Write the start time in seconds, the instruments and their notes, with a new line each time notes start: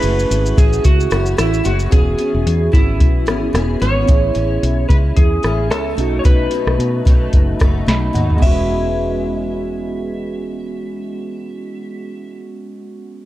Already playing: synth keys A3 C#4 E4 G#4, electric slide guitar B4
0.02 fingered electric bass F#1, steel-string acoustic guitar E3 A3 C#4, closed hi-hat, shaker
0.06 steel-string acoustic guitar F#4
0.19 shaker
0.31 fingered electric bass G#1, closed hi-hat, shaker
0.46 shaker
0.56 fingered electric bass A1, steel-string acoustic guitar E3 A3 C#4 F#4, electric slide guitar G#4, kick, closed hi-hat, shaker
0.73 shaker
0.85 fingered electric bass C#2, electric slide guitar F#4, kick, closed hi-hat, shaker
1.00 shaker
1.10 fingered electric bass F#1, steel-string acoustic guitar E3 A3 C#4 F#4, cross-stick, closed hi-hat, shaker
1.26 shaker
1.37 fingered electric bass A1, steel-string acoustic guitar E3 A3 C#4 F#4, electric slide guitar E4, cross-stick, closed hi-hat, shaker
1.54 shaker
1.64 fingered electric bass F#1, steel-string acoustic guitar E3 A3 C#4 F#4, electric slide guitar F#4, closed hi-hat, shaker
1.80 shaker
1.90 fingered electric bass E1, steel-string acoustic guitar E3 B3 C#4 G#4, synth keys B3 C#4 F#4, electric slide guitar G#4, kick, closed hi-hat
1.96 synth keys G#4
2.18 steel-string acoustic guitar E3 B3 C#4 G#4, closed hi-hat
2.34 fingered electric bass E1
2.46 fingered electric bass E2, closed hi-hat
2.72 fingered electric bass G#1, steel-string acoustic guitar E3 B3 C#4 G#4, electric slide guitar E4, kick, closed hi-hat
3.00 fingered electric bass B1, kick, closed hi-hat
3.26 fingered electric bass G#1, steel-string acoustic guitar E3 B3 C#4 G#4, cross-stick, closed hi-hat
3.53 fingered electric bass E1, steel-string acoustic guitar E3 B3 C#4, cross-stick, closed hi-hat
3.57 steel-string acoustic guitar G#4
3.80 fingered electric bass G#1, steel-string acoustic guitar E3 B3 C#4, electric slide guitar C#5, closed hi-hat
3.84 steel-string acoustic guitar G#4
4.06 fingered electric bass A1, steel-string acoustic guitar A2 E3 G#3 C#4 E4, synth keys B3 C#4 E4, kick, closed hi-hat
4.11 synth keys G#4
4.34 fingered electric bass A1, steel-string acoustic guitar E3 G#3 C#4 E4, closed hi-hat
4.63 fingered electric bass B1, closed hi-hat
4.88 fingered electric bass C#2, steel-string acoustic guitar E3 G#3 C#4 E4, electric slide guitar B4, kick, closed hi-hat
5.16 fingered electric bass E2, electric slide guitar G#4, kick, closed hi-hat
5.43 fingered electric bass A1, steel-string acoustic guitar E3 G#3 C#4 E4, cross-stick, closed hi-hat
5.70 fingered electric bass C#2, steel-string acoustic guitar E3 G#3 C#4 E4, electric slide guitar A4, cross-stick, closed hi-hat
5.96 fingered electric bass B1, steel-string acoustic guitar B2 F#3 A3, synth keys A3 C#4 D#4, closed hi-hat
6.00 steel-string acoustic guitar D#4, synth keys F#4
6.19 electric slide guitar C#5
6.24 fingered electric bass B1, steel-string acoustic guitar B2 F#3 A3 D#4, electric slide guitar B4, kick, closed hi-hat
6.51 steel-string acoustic guitar B2 F#3 A3, closed hi-hat
6.55 steel-string acoustic guitar D#4
6.67 fingered electric bass B1, cross-stick
6.79 fingered electric bass B2, closed hi-hat
7.05 fingered electric bass B1, steel-string acoustic guitar B2 F#3 A3 D#4, kick, closed hi-hat
7.33 fingered electric bass F#1, kick, closed hi-hat
7.59 fingered electric bass F#1, steel-string acoustic guitar B2 F#3 A3 D#4, kick, cross-stick, closed hi-hat
7.86 fingered electric bass B1, steel-string acoustic guitar B2 F#3 A3 D#4, synth keys B5, snare, closed hi-hat
8.13 fingered electric bass D#2, steel-string acoustic guitar B2 F#3 A3 D#4, synth keys F#5, closed hi-hat, mid tom
8.30 floor tom
8.36 steel-string acoustic guitar E3, synth keys G#3 B3
8.42 fingered electric bass E1, steel-string acoustic guitar G#3 C#4, synth keys C#4, electric slide guitar E5, kick, crash
8.46 synth keys F#4, steel-string acoustic guitar G#4 B4